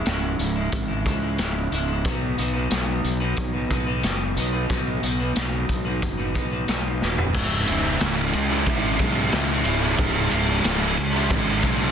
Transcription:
0.06 C#1 C#2 G#2 C#3 G#3 E4, snare, closed hi-hat
0.39 C#1, closed hi-hat
0.56 C#3 G#3 E4
0.72 G#1, kick, closed hi-hat
0.88 C#3 G#3 E4
1.05 C#2 G#2 C#3 G#3 E4, kick, closed hi-hat
1.21 C#3 G#3 E4
1.38 C#1 C#2 G#2 C#3 G#3 E4, snare, closed hi-hat
1.71 C#1 G#2 C#3 G#3 E4, closed hi-hat
1.88 C#3 G#3 E4
2.04 B1 B2 F#3 B3 D#4 F#4 B4, kick, closed hi-hat
2.38 B1 B3 D#4 F#4 B4, closed hi-hat
2.54 B3 D#4 F#4 B4
2.70 B1 B2 F#3 B3 D#4 F#4 B4, snare, closed hi-hat
3.04 B1, closed hi-hat
3.20 B3 D#4 F#4 B4
3.37 B1, kick, closed hi-hat
3.53 B3 D#4 F#4 B4
3.70 B1 B3 D#4 F#4 B4, kick, closed hi-hat
3.86 B3 D#4 F#4 B4
4.02 F#1 B2 F#3 B3 D#4 F#4 B4, snare, closed hi-hat
4.36 B1 B3 D#4 F#4 B4, closed hi-hat
4.53 B3 D#4 F#4 B4
4.69 B1 B2 F#3 B3 D#4 F#4 B4, kick, closed hi-hat
5.03 B1 B3 D#4 F#4 B4, closed hi-hat
5.19 B3 D#4 F#4 B4
5.36 B1 B2 F#3 B3 D#4 F#4 B4, snare, closed hi-hat
5.69 B1, kick, closed hi-hat
5.85 B3 D#4 F#4 B4
6.02 F#1, kick, closed hi-hat
6.18 B3 D#4 F#4 B4
6.34 B1 B3 D#4 F#4 B4, kick, closed hi-hat
6.51 B3 D#4 F#4 B4
6.67 B1 B2 F#3 B3 D#4 F#4 B4, snare, closed hi-hat
7.01 D#1 B3 D#4 F#4 B4, snare
7.18 B3 D#4 F#4 B4, floor tom
7.33 C#1 C#2 G#2 C#3 G#3 E4, kick, crash
7.67 C#1 G#2 C#3 G#3 E4, ride
8.00 C#1 C#2 G#2 C#3 G#3 E4, snare, ride
8.17 C#3 G#3 E4
8.33 C#2, muted distorted electric guitar stroke, ride
8.49 C#3 G#3 E4
8.66 G#1 G#2 C#3 G#3 E4, kick, ride
8.99 B1 G#2 C#3 G#3 E4, kick, ride
9.32 C#2 G#2 C#3 G#3 E4, snare, ride
9.49 C#3 G#3 E4
9.65 C#1 G#2 C#3 G#3 E4, ride
9.82 C#3 G#3 E4
9.97 C#1 C#2 G#2 C#3 G#3 E4, kick, ride
10.31 C#1 G#2 C#3 G#3 E4, ride
10.64 C#1 C#2 G#2 C#3 G#3 E4, snare, ride
10.81 C#3 G#3 E4
10.97 C#2, muted distorted electric guitar stroke, ride
11.13 C#3 G#3 E4
11.29 G#1 G#2 C#3 G#3 E4, kick, ride
11.62 B1 G#2 C#3 G#3 E4, kick, ride
11.81 snare

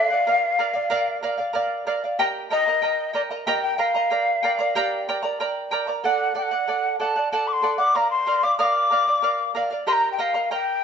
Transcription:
Already playing: D5 E5
0.05 F5
0.10 D5 F#5
0.27 A#4 D5 F5
0.59 A#4 D5 F5
0.73 D5 F5
0.90 A#4 D5 F5
1.23 A#4 D5 F5
1.38 D5 F5
1.53 A#4 D5 F5
1.87 A#4 D5 F5
2.04 D5 F5
2.19 G4 A#4 D#5 G5 A#5
2.50 A#4 D#5 G5 A#5
2.67 A#4 D#5 A#5
2.82 A#4 D#5 G5 A#5
3.13 A#4 D5 D#5 G5 A#5
3.31 A#4 D#5 A#5
3.47 G4 A#4 D#5 G5 A#5
3.63 G5
3.78 A#4 D#5 F5 G5 A#5
3.94 A#4 D#5 A#5
4.10 A#4 D5 G5 A#5
4.43 A#4 D5 G5 A#5
4.59 A#4 D5 A#5
4.75 G4 A#4 D5 G5 A#5
5.08 A#4 D5 G5 A#5
5.22 A#4 D5 A#5
5.40 A#4 D5 G5 A#5
5.71 A#4 D5 G5 A#5
5.87 A#4 D5 A#5
6.04 A4 D5 F#5
6.34 A4 D5 F#5 G5
6.43 F#5
6.51 D5 F#5
6.68 A4 D5 F#5
6.99 A4 D5 F#5 A5
7.16 D5 F#5
7.31 A4 D5 F#5 A5
7.48 D6
7.53 C6
7.62 A4 D5 F#5
7.78 D5 F#5 D6
7.95 A#4 D5 F5 A#5
8.11 C6
8.27 A#4 D5 F5
8.43 D5 F5 D6
8.59 A#4 D5 F5 D#6
8.63 D6
8.91 A#4 D5 F5
9.07 D5 F5
9.22 A#4 D5 F5
9.55 A#4 D5 F5
9.70 D5 F5
9.87 G4 A#4 D#5 G5 A#5 C6
9.93 A#5
10.13 G5
10.18 A#4 D#5 F5 G5 A#5
10.34 A#4 D#5 A#5
10.51 A#4 D#5 G5 A#5

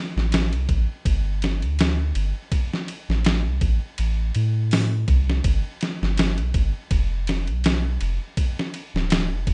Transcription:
0.16 A1, snare
0.32 snare, ride
0.53 C2, ride
0.69 A1, kick, ride
1.05 G1, kick, ride
1.42 snare, ride
1.62 D2, ride
1.79 snare, ride
2.15 G1, ride
2.52 kick, ride
2.74 snare
2.88 ride
3.09 A1, snare
3.25 snare, ride
3.46 C2
3.61 A1, kick, ride
3.98 A1, ride
4.35 A2, ride
4.71 snare, open hi-hat
5.08 C2, kick, ride
5.30 snare
5.44 G1, kick, ride
5.81 snare, ride
6.02 G1, snare
6.17 snare, ride
6.38 B1, ride
6.54 G1, kick, ride
6.91 F1, kick, ride
7.27 snare, ride
7.47 B1, ride
7.64 snare, ride
8.01 F1, ride
8.37 kick, ride
8.59 snare
8.74 ride
8.94 D1, snare
9.10 snare, ride
9.31 F1
9.47 D1, kick, ride

